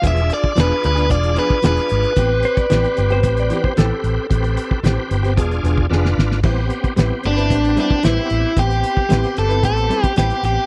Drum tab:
CC |----------------|----------------|----------------|x---------------|
HH |xxx-x-xxxxx-xxxx|x-xxxxxxxxx-x-x-|xxx-x-xxxxx-----|--xxx-xxxxx-x-x-|
SD |----o-------o---|----o-------o---|----o-------oooo|----o-------o---|
BD |o--o----o--o----|o--o----o--o----|o--o----o--o----|o--o----o--o----|

CC |----------------|
HH |xxx-xxxxxxxxxxx-|
SD |----oo------o---|
BD |o--o----o--o----|